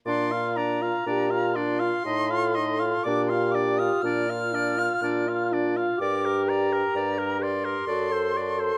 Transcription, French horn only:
X:1
M:3/4
L:1/8
Q:1/4=61
K:Bb
V:1 name="French horn"
z2 G F A A | G2 F4 | G3 z A A |]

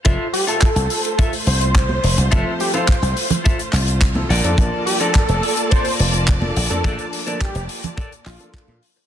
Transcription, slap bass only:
X:1
M:4/4
L:1/16
Q:1/4=106
K:F
V:1 name="Slap bass" clef=bass
F,,, z4 C,, z4 C,,4 F,,, C,, | F,,, z4 C,, z4 C,,4 B,,, F,, | B,,, z4 F,,, z4 F,,,4 B,,, F,, | B,,, z4 F,,, z4 B,,, z2 B,, z2 |]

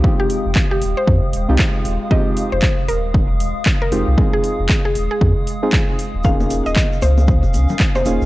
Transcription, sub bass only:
X:1
M:4/4
L:1/16
Q:"Swing 16ths" 1/4=116
K:Fm
V:1 name="Sub bass" clef=bass
z3 F,,, z2 E,,, z F,, z E,,, C,, z2 E,,, z | z3 F,,, z2 E,,,3 F,,, E,,, z3 F,,, C,, | z3 F,,, z2 E,,, z F,, z6 E,,,- | E,,,3 E,,, z2 D,,3 E,,, D,, z3 E,,, B,,, |]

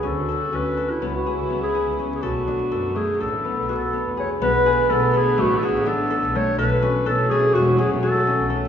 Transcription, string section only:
X:1
M:9/8
L:1/8
Q:3/8=83
K:Bdor
V:1 name="String section"
[D,CF]4 [C,B,E]4- [C,B,E] | [D,A,]8- [D,A,] | [D,A,B,]8- [D,A,B,] | [E,F,A,]8- [E,F,A,] |]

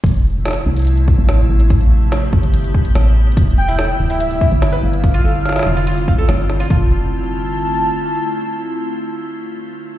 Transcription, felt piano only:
X:1
M:4/4
L:1/16
Q:1/4=144
K:Flyd
V:1 name="Felt piano"
z16 | z16 | z3 E A z2 E E E E z E B z2 | z F A z2 E F F F z f A F z2 F |
F2 z12 z2 | z16 |]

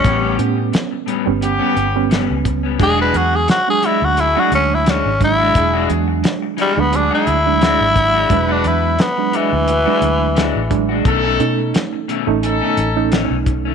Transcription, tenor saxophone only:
X:1
M:4/4
L:1/16
Q:"Swing 16ths" 1/4=87
K:Emix
V:1 name="Tenor saxophone"
C2 z12 z2 | G B F G F G E F E F C E C2 E2- | E2 z4 =G, B, D E6- E- | E D E2 B,2 E,8- E,2 |
z16 |]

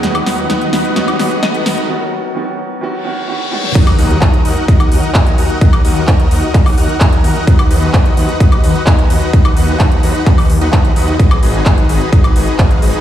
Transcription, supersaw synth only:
X:1
M:4/4
L:1/16
Q:1/4=129
K:Ebm
V:1 name="Supersaw synth"
[^D^F=B^d^f]2 [DFBdf]2 [DFBdf]2 [DFBdf]2 [DFBdf]2 [DFBdf]2 [DFBdf]2 [DFBdf]2 | z16 | [EGBeg]2 [EGBeg]2 [EGBeb]2 [EGBeg]2 [EGBeg]2 [EGBeg]2 [GB]2 [EGBeg]2 | [Ee]2 [EGBeg]2 [EGBb]2 [EGBeg]2 [Ee]2 [EGBeg]2 [EGBea]2 [EGBeg]2 |
[^D^F=B]2 [DFB^d^f]2 [DFBdf]2 [DFBdf]2 [DFBdf]2 [DFBdf]2 [DFBda]2 [DFBdf]2 | [^D^F=B^d^f]2 [DFBdf]2 [DFBdf]2 [DFBdf]2 [DFBdf]2 z [DFBdf] [DFBdf]2 [DFBdf]2 | [EGAce]2 [EGAce]2 [EGAcg]2 [EGAce]2 [EAe]2 [EGAce]2 [EGAcf]2 [EGAce]2 |]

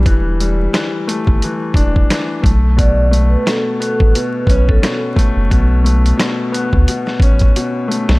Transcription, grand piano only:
X:1
M:4/4
L:1/8
Q:"Swing 16ths" 1/4=88
K:Bphr
V:1 name="Grand piano" clef=bass
[E,G,D] G, E, A, E, D E, A, | B,, A, B,, B, B,, ^C B,, A, | B,, A, B,, B, B,, ^C B,, A, |]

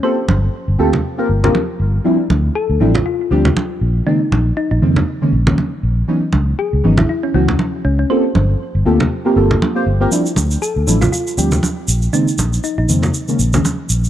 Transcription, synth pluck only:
X:1
M:4/4
L:1/16
Q:"Swing 16ths" 1/4=119
K:Bblyd
V:1 name="Synth pluck"
c3 z12 z | z4 A3 F F z6 z | _E z3 E E z8 z2 | z4 ^G3 E E ^C C z3 C C |
c3 z12 z | z4 A3 F F z6 z | _E z3 E E z8 z2 |]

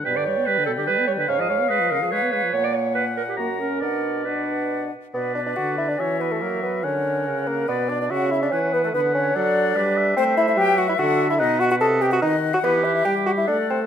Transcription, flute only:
X:1
M:3/4
L:1/16
Q:1/4=144
K:Bm
V:1 name="Flute"
d12 | ^e12 | f8 f4 | f4 f6 z2 |
B2 d d f2 e d c2 B A | ^A2 B2 c6 A2 | B2 d d f2 e d c2 B A | B2 c2 d8 |
[K:Em] c2 e e g2 f e f3 e | ^d2 f f a2 g f d3 f | B2 e e g2 f e d2 c2 |]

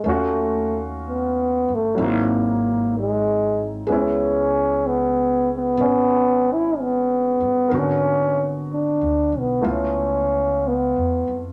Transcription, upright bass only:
X:1
M:4/4
L:1/8
Q:"Swing" 1/4=62
K:C#phr
V:1 name="Upright bass" clef=bass
^D,,3 =G,,, ^G,,,4 | C,,4 G,,,3 =G,,, | G,,,2- (3G,,, D,, B,,, C,,2- (3C,, E,, ^E,, |]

